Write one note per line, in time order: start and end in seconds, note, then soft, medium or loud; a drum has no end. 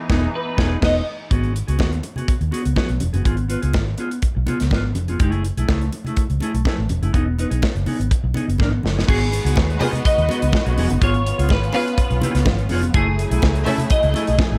0.00 1.29 E3 medium
0.00 1.29 B3 medium
0.00 1.29 D#4 medium
0.00 1.27 G#4 medium
0.09 0.26 E1 loud
0.09 0.26 B3 loud
0.09 0.27 D#4 loud
0.09 0.27 G#4 medium
0.09 kick loud
0.09 snare loud
0.35 0.80 B4 medium
0.57 0.75 E1 medium
0.57 0.74 B3 loud
0.57 0.75 D#4 medium
0.57 0.76 G#4 loud
0.57 kick loud
0.57 snare loud
0.81 0.99 E1 loud
0.81 0.98 B3 loud
0.81 0.99 D#4 medium
0.81 1.00 B4 medium
0.81 1.06 D#5 loud
0.81 kick medium
0.81 snare loud
0.81 crash medium
1.30 1.61 G#1 medium
1.30 1.53 B3 medium
1.30 1.54 F#4 medium
1.30 1.54 G#4 medium
1.30 kick loud
1.30 closed hi-hat medium
1.44 closed hi-hat soft
1.54 muted clean electric guitar stroke soft
1.54 closed hi-hat medium
1.68 1.77 C#2 medium
1.68 1.77 B3 soft
1.68 1.79 F#4 medium
1.68 1.79 G#4 medium
1.68 closed hi-hat medium
1.78 1.99 D#2 medium
1.78 1.98 B3 medium
1.78 1.92 F#4 medium
1.78 1.91 G#4 medium
1.78 kick medium
1.78 snare loud
1.78 high conga medium
1.92 muted clean electric guitar stroke soft
1.92 closed hi-hat soft
2.03 muted clean electric guitar stroke soft
2.03 closed hi-hat medium
2.03 muted conga soft
2.16 2.33 B3 soft
2.16 2.33 F#4 medium
2.16 2.32 G#4 medium
2.16 closed hi-hat soft
2.16 low conga medium
2.28 kick loud
2.28 closed hi-hat medium
2.41 2.50 D#2 medium
2.41 muted clean electric guitar stroke soft
2.41 closed hi-hat soft
2.51 2.72 B3 medium
2.51 2.65 F#4 medium
2.51 2.63 G#4 medium
2.51 closed hi-hat medium
2.51 muted conga soft
2.64 2.75 C#2 medium
2.64 muted clean electric guitar stroke soft
2.64 closed hi-hat soft
2.76 2.96 B3 medium
2.76 2.90 F#4 medium
2.76 2.88 G#4 medium
2.76 kick medium
2.76 snare medium
2.76 high conga medium
2.89 2.99 B1 medium
2.89 muted clean electric guitar stroke soft
2.89 closed hi-hat soft
3.00 3.11 E1 medium
3.00 muted clean electric guitar stroke soft
3.00 closed hi-hat medium
3.00 high conga medium
3.13 3.23 F#1 medium
3.13 3.23 B3 soft
3.13 3.25 F#4 soft
3.13 3.25 G#4 medium
3.13 closed hi-hat soft
3.13 high conga medium
3.24 3.55 G#1 medium
3.24 3.44 B3 medium
3.24 3.38 F4 medium
3.24 3.36 G#4 medium
3.24 kick loud
3.24 closed hi-hat medium
3.37 muted clean electric guitar stroke soft
3.37 closed hi-hat soft
3.48 3.63 B3 medium
3.48 3.62 F4 medium
3.48 3.61 B4 medium
3.48 closed hi-hat medium
3.62 3.76 C#2 medium
3.62 3.79 B3 soft
3.62 3.78 F4 soft
3.62 3.78 G#4 medium
3.62 closed hi-hat soft
3.73 3.94 G#1 medium
3.73 kick medium
3.73 snare loud
3.73 high conga medium
3.86 muted clean electric guitar stroke soft
3.98 4.18 B3 medium
3.98 4.11 F4 medium
3.98 4.10 G#4 medium
3.98 closed hi-hat medium
3.98 muted conga soft
4.11 muted clean electric guitar stroke soft
4.11 closed hi-hat soft
4.22 kick medium
4.22 closed hi-hat medium
4.35 4.45 B1 medium
4.35 muted clean electric guitar stroke soft
4.46 4.66 B3 medium
4.46 4.60 F4 medium
4.46 4.59 G#4 medium
4.46 closed hi-hat medium
4.46 muted conga soft
4.46 low conga medium
4.60 4.70 C#2 medium
4.60 muted clean electric guitar stroke soft
4.60 snare soft
4.60 closed hi-hat soft
4.71 4.97 G#1 medium
4.71 4.91 B3 medium
4.71 4.84 F4 medium
4.71 4.84 B4 medium
4.71 kick medium
4.71 snare loud
4.71 high conga medium
4.84 muted clean electric guitar stroke soft
4.95 5.16 F1 medium
4.95 muted clean electric guitar stroke soft
4.95 closed hi-hat medium
4.95 high conga medium
5.08 5.20 B3 medium
5.08 5.21 F4 medium
5.08 5.21 G#4 medium
5.08 closed hi-hat soft
5.08 high conga medium
5.20 5.50 F#1 medium
5.20 5.42 A3 medium
5.20 5.43 E4 medium
5.20 5.43 G#4 medium
5.20 kick loud
5.20 closed hi-hat medium
5.32 closed hi-hat soft
5.44 muted clean electric guitar stroke soft
5.44 closed hi-hat medium
5.57 5.66 B1 medium
5.57 5.68 A3 soft
5.57 5.69 E4 medium
5.57 5.70 G#4 medium
5.57 closed hi-hat medium
5.68 5.88 C#2 medium
5.68 5.88 A3 medium
5.68 5.83 E4 medium
5.68 5.81 G#4 medium
5.68 kick loud
5.68 snare loud
5.68 high conga medium
5.81 muted clean electric guitar stroke soft
5.81 closed hi-hat soft
5.92 muted clean electric guitar stroke soft
5.92 closed hi-hat medium
5.92 muted conga soft
6.04 6.23 A3 medium
6.04 6.22 E4 medium
6.04 6.21 G#4 medium
6.04 closed hi-hat soft
6.04 low conga medium
6.16 kick medium
6.16 closed hi-hat medium
6.30 6.39 C#2 medium
6.30 muted clean electric guitar stroke soft
6.30 closed hi-hat soft
6.40 6.61 A3 medium
6.40 6.55 E4 medium
6.40 6.53 G#4 medium
6.40 closed hi-hat medium
6.40 muted conga soft
6.54 6.63 B1 medium
6.54 muted clean electric guitar stroke soft
6.54 closed hi-hat soft
6.65 6.85 A3 medium
6.65 6.78 E4 medium
6.65 6.77 G#4 medium
6.65 kick loud
6.65 snare loud
6.65 high conga medium
6.78 6.88 A1 medium
6.78 muted clean electric guitar stroke soft
6.89 7.00 E1 medium
6.89 muted clean electric guitar stroke soft
6.89 closed hi-hat medium
6.89 high conga medium
7.02 7.12 F#1 medium
7.02 7.13 A3 soft
7.02 7.14 E4 medium
7.02 7.14 G#4 medium
7.02 closed hi-hat soft
7.02 high conga medium
7.13 7.44 E1 loud
7.13 7.33 B3 medium
7.13 7.27 D#4 medium
7.13 7.25 G#4 medium
7.13 kick loud
7.13 closed hi-hat medium
7.26 muted clean electric guitar stroke soft
7.38 7.51 B3 medium
7.38 7.50 D#4 medium
7.38 7.50 B4 medium
7.38 closed hi-hat medium
7.38 muted conga soft
7.50 7.60 B1 medium
7.50 7.68 B3 soft
7.50 7.67 D#4 soft
7.50 7.66 G#4 medium
7.50 closed hi-hat medium
7.62 kick loud
7.62 snare loud
7.62 high conga medium
7.75 7.85 F#1 medium
7.75 muted clean electric guitar stroke soft
7.75 closed hi-hat soft
7.86 8.06 B3 medium
7.86 7.99 D#4 medium
7.86 7.98 G#4 medium
7.86 open hi-hat medium
7.86 muted conga soft
7.86 low conga medium
7.99 8.09 G#1 medium
7.99 muted clean electric guitar stroke soft
7.99 closed hi-hat soft
8.11 muted clean electric guitar stroke soft
8.11 kick loud
8.11 closed hi-hat medium
8.24 8.33 B1 loud
8.24 muted clean electric guitar stroke soft
8.34 8.55 B3 medium
8.34 8.48 D#4 medium
8.34 8.47 G#4 medium
8.34 closed hi-hat medium
8.34 muted conga soft
8.34 low conga medium
8.48 8.57 F#1 medium
8.48 muted clean electric guitar stroke soft
8.48 closed hi-hat soft
8.58 8.79 G#1 medium
8.58 8.80 B3 medium
8.58 8.72 D#4 medium
8.58 8.71 B4 medium
8.58 kick loud
8.58 snare soft
8.58 high conga medium
8.72 muted clean electric guitar stroke medium
8.83 9.03 F#1 medium
8.83 muted clean electric guitar stroke soft
8.83 snare medium
8.83 high conga medium
8.96 9.06 B3 soft
8.96 9.08 D#4 soft
8.96 9.08 G#4 medium
8.96 snare medium
9.07 9.38 G#1 loud
9.07 11.00 G#3 medium
9.07 9.27 B3 medium
9.07 11.00 D#4 medium
9.07 11.00 F#4 medium
9.07 9.21 F#4 medium
9.07 9.20 G#4 loud
9.07 10.08 G#4 medium
9.07 11.00 B4 medium
9.07 kick loud
9.07 crash loud
9.21 muted clean electric guitar stroke soft
9.32 muted clean electric guitar stroke soft
9.32 closed hi-hat medium
9.32 muted conga soft
9.45 9.54 C#2 medium
9.45 9.62 B3 medium
9.45 9.61 F#4 medium
9.45 9.61 G#4 medium
9.45 closed hi-hat medium
9.56 9.77 D#2 medium
9.56 kick loud
9.56 snare loud
9.56 high conga medium
9.70 muted clean electric guitar stroke soft
9.70 closed hi-hat soft
9.80 10.01 B3 medium
9.80 9.94 F#4 medium
9.80 10.01 G#4 medium
9.80 9.93 G#4 medium
9.80 10.01 D#5 loud
9.80 open hi-hat medium
9.80 muted conga medium
9.80 low conga medium
9.93 muted clean electric guitar stroke soft
9.93 closed hi-hat soft
9.93 low conga medium
10.05 11.03 D#5 loud
10.05 kick loud
10.05 closed hi-hat medium
10.18 10.27 D#2 medium
10.18 muted clean electric guitar stroke soft
10.18 closed hi-hat soft
10.29 10.48 B3 medium
10.29 10.42 F#4 medium
10.29 10.41 G#4 medium
10.29 closed hi-hat medium
10.29 muted conga medium
10.42 10.51 C#2 medium
10.42 muted clean electric guitar stroke soft
10.42 closed hi-hat medium
10.52 kick loud
10.52 snare loud
10.52 high conga medium
10.66 10.75 B1 medium
10.66 10.76 B3 medium
10.66 10.77 F#4 medium
10.66 10.78 G#4 medium
10.66 closed hi-hat soft
10.77 10.88 E1 loud
10.77 10.97 B3 medium
10.77 10.91 F#4 medium
10.77 10.89 G#4 loud
10.77 open hi-hat medium
10.77 high conga medium
10.90 11.00 F#1 medium
10.90 muted clean electric guitar stroke soft
10.90 closed hi-hat soft
10.90 high conga medium
11.01 11.31 G#1 loud
11.01 12.92 B3 medium
11.01 11.21 B3 medium
11.01 12.92 C#4 medium
11.01 12.92 F4 medium
11.01 11.15 F4 loud
11.01 11.14 G#4 loud
11.01 11.51 C#5 loud
11.01 kick loud
11.01 closed hi-hat medium
11.14 muted clean electric guitar stroke soft
11.14 closed hi-hat soft
11.26 muted clean electric guitar stroke soft
11.26 closed hi-hat medium
11.38 11.52 C#2 loud
11.38 11.55 B3 medium
11.38 11.54 F4 medium
11.38 11.54 G#4 medium
11.38 closed hi-hat medium
11.49 11.69 G#1 loud
11.49 11.73 B4 loud
11.49 kick loud
11.49 snare loud
11.49 high conga medium
11.63 muted clean electric guitar stroke medium
11.63 closed hi-hat soft
11.73 11.93 B3 medium
11.73 11.94 C#4 medium
11.73 11.87 F4 medium
11.73 11.86 G#4 medium
11.73 11.94 B4 loud
11.73 12.67 B4 loud
11.73 11.94 F5 loud
11.73 open hi-hat medium
11.73 muted conga medium
11.87 muted clean electric guitar stroke soft
11.87 closed hi-hat medium
11.98 kick loud
11.98 closed hi-hat medium
12.10 12.20 B1 loud
12.10 muted clean electric guitar stroke medium
12.10 closed hi-hat soft
12.21 12.42 B3 medium
12.21 12.35 F4 medium
12.21 12.34 G#4 medium
12.21 closed hi-hat medium
12.21 muted conga medium
12.21 low conga medium
12.35 12.44 C#2 medium
12.35 muted clean electric guitar stroke medium
12.35 snare soft
12.35 closed hi-hat medium
12.45 12.70 G#1 loud
12.45 kick loud
12.45 snare loud
12.45 high conga loud
12.59 muted clean electric guitar stroke soft
12.59 closed hi-hat soft
12.69 12.90 F1 loud
12.69 12.90 B3 loud
12.69 12.83 F4 loud
12.69 12.82 G#4 loud
12.69 open hi-hat medium
12.69 high conga medium
12.82 muted clean electric guitar stroke soft
12.82 closed hi-hat soft
12.82 high conga medium
12.93 13.24 F#1 loud
12.93 14.58 F#3 medium
12.93 14.58 A3 medium
12.93 13.14 A3 loud
12.93 14.58 E4 medium
12.93 13.07 E4 loud
12.93 14.58 G#4 medium
12.93 13.94 G#4 loud
12.93 13.06 G#4 loud
12.93 kick loud
12.93 closed hi-hat medium
13.07 muted clean electric guitar stroke soft
13.18 muted clean electric guitar stroke medium
13.18 closed hi-hat medium
13.31 13.40 B1 loud
13.31 13.48 A3 medium
13.31 13.47 E4 medium
13.31 13.47 G#4 medium
13.31 closed hi-hat medium
13.42 13.62 C#2 loud
13.42 kick loud
13.42 snare loud
13.42 high conga medium
13.55 muted clean electric guitar stroke soft
13.55 closed hi-hat soft
13.65 13.86 A3 medium
13.65 13.87 C#4 medium
13.65 13.80 E4 medium
13.65 13.78 G#4 medium
13.65 13.86 A4 medium
13.65 13.86 E5 loud
13.65 open hi-hat medium
13.65 muted conga medium
13.65 low conga medium
13.78 muted clean electric guitar stroke medium
13.78 closed hi-hat medium
13.78 low conga medium
13.90 14.58 D#5 loud
13.90 kick loud
13.90 closed hi-hat medium
14.03 14.13 C#2 loud
14.03 muted clean electric guitar stroke soft
14.03 closed hi-hat soft
14.14 14.34 A3 medium
14.14 14.27 E4 medium
14.14 14.26 G#4 loud
14.14 closed hi-hat medium
14.14 muted conga medium
14.27 14.37 B1 medium
14.27 muted clean electric guitar stroke medium
14.27 closed hi-hat medium
14.39 kick loud
14.39 snare loud
14.39 high conga medium
14.51 14.58 A1 loud
14.51 14.58 A3 medium
14.51 14.58 E4 medium
14.51 14.58 G#4 medium